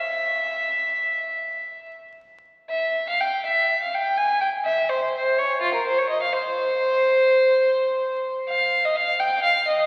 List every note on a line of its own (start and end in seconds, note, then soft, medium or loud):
0.00 1.94 E5 medium
2.70 3.05 E5 medium
3.09 3.20 F5 medium
3.21 3.45 G5 medium
3.46 3.81 E5 medium
3.82 3.93 F5 medium
3.94 4.18 G5 medium
4.17 4.41 G#5 medium
4.41 4.49 G5 medium
4.64 4.89 E5 medium
4.89 5.13 C5 medium
5.14 5.38 C5 medium
5.38 5.62 C#5 medium
5.62 5.73 F4 medium
5.74 5.86 A#4 medium
5.87 5.98 C5 medium
5.98 6.10 C#5 medium
6.10 6.21 D#5 medium
6.22 6.34 F5 medium
6.33 8.37 C5 medium
8.49 8.82 F5 medium
8.85 8.96 D#5 medium
8.96 9.20 F5 medium
9.19 9.44 G5 medium
9.43 9.67 F5 medium
9.68 9.86 D#5 medium